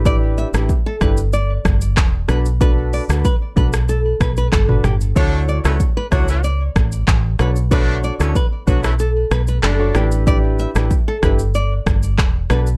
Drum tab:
HH |----------------|--o-------------|----------------|----------------|
SH |x-xxx-xxx-xxx-xx|x-xxx-xxx-xxx-xx|x-xxx-xxx-xxx-xx|x-xxx-xxx-xxx-xx|
CP |------------x---|------------x---|------------x---|------------x---|
SD |---r--r---r-r-r-|---r---r--r-r-r-|---r--r---r-r-r-|---r---r--r-r-r-|
T2 |----------------|-------------oo-|----------------|----------------|
BD |o---o-o---o-o---|o---o-o---o-o---|o---o-o---o-o---|o---o-o---------|

HH |----------------|
SH |x-xxx-xxx-xxx-xx|
CP |------------x---|
SD |---r--r---r-r-r-|
T2 |----------------|
BD |o---o-o---o-o---|